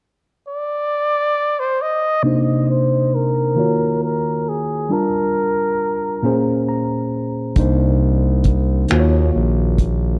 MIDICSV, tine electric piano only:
0, 0, Header, 1, 2, 480
1, 0, Start_track
1, 0, Key_signature, -3, "minor"
1, 0, Tempo, 888889
1, 1205, Time_signature, 6, 3, 24, 8
1, 5503, End_track
2, 0, Start_track
2, 0, Title_t, "Tine electric piano"
2, 0, Program_c, 0, 4
2, 1203, Note_on_c, 0, 48, 58
2, 1207, Note_on_c, 0, 58, 50
2, 1213, Note_on_c, 0, 62, 53
2, 1217, Note_on_c, 0, 63, 55
2, 1224, Note_on_c, 0, 72, 63
2, 1295, Control_c, 0, 64, 127
2, 1918, Note_off_c, 0, 58, 0
2, 1919, Note_on_c, 0, 51, 46
2, 1924, Note_off_c, 0, 48, 0
2, 1925, Note_on_c, 0, 58, 46
2, 1929, Note_off_c, 0, 62, 0
2, 1931, Note_off_c, 0, 63, 0
2, 1931, Note_on_c, 0, 65, 47
2, 1933, Control_c, 0, 64, 0
2, 1934, Note_off_c, 0, 72, 0
2, 1937, Note_on_c, 0, 66, 41
2, 1941, Note_on_c, 0, 73, 60
2, 2028, Control_c, 0, 64, 127
2, 2641, Note_on_c, 0, 55, 49
2, 2642, Note_off_c, 0, 51, 0
2, 2645, Note_off_c, 0, 58, 0
2, 2645, Note_off_c, 0, 65, 0
2, 2648, Note_on_c, 0, 62, 46
2, 2651, Note_off_c, 0, 66, 0
2, 2651, Control_c, 0, 64, 0
2, 2651, Note_on_c, 0, 65, 45
2, 2653, Note_off_c, 0, 73, 0
2, 2656, Note_on_c, 0, 81, 44
2, 2663, Note_on_c, 0, 70, 59
2, 2742, Control_c, 0, 64, 127
2, 3361, Note_on_c, 0, 46, 67
2, 3363, Note_off_c, 0, 55, 0
2, 3366, Note_off_c, 0, 62, 0
2, 3366, Note_on_c, 0, 58, 56
2, 3368, Note_off_c, 0, 65, 0
2, 3370, Note_off_c, 0, 81, 0
2, 3372, Note_on_c, 0, 61, 60
2, 3373, Control_c, 0, 64, 0
2, 3374, Note_off_c, 0, 70, 0
2, 3376, Note_on_c, 0, 68, 56
2, 3381, Note_on_c, 0, 72, 64
2, 3472, Control_c, 0, 64, 127
2, 3610, Note_on_c, 0, 82, 51
2, 4066, Note_off_c, 0, 82, 0
2, 4080, Note_off_c, 0, 58, 0
2, 4081, Note_on_c, 0, 48, 54
2, 4083, Note_off_c, 0, 46, 0
2, 4087, Note_on_c, 0, 58, 52
2, 4088, Note_off_c, 0, 61, 0
2, 4091, Note_off_c, 0, 68, 0
2, 4092, Control_c, 0, 64, 0
2, 4092, Note_on_c, 0, 62, 53
2, 4093, Note_off_c, 0, 72, 0
2, 4096, Note_on_c, 0, 63, 56
2, 4103, Note_on_c, 0, 72, 65
2, 4185, Control_c, 0, 64, 127
2, 4801, Note_off_c, 0, 58, 0
2, 4803, Note_off_c, 0, 48, 0
2, 4803, Note_on_c, 0, 51, 60
2, 4807, Note_on_c, 0, 58, 58
2, 4808, Note_off_c, 0, 62, 0
2, 4810, Note_off_c, 0, 63, 0
2, 4812, Control_c, 0, 64, 0
2, 4813, Note_on_c, 0, 65, 58
2, 4814, Note_off_c, 0, 72, 0
2, 4818, Note_on_c, 0, 66, 58
2, 4822, Note_on_c, 0, 72, 54
2, 4849, Note_off_c, 0, 72, 0
2, 4859, Note_on_c, 0, 73, 73
2, 4893, Control_c, 0, 64, 127
2, 5503, Note_off_c, 0, 51, 0
2, 5503, Note_off_c, 0, 58, 0
2, 5503, Note_off_c, 0, 65, 0
2, 5503, Note_off_c, 0, 66, 0
2, 5503, Note_off_c, 0, 73, 0
2, 5503, End_track
0, 0, End_of_file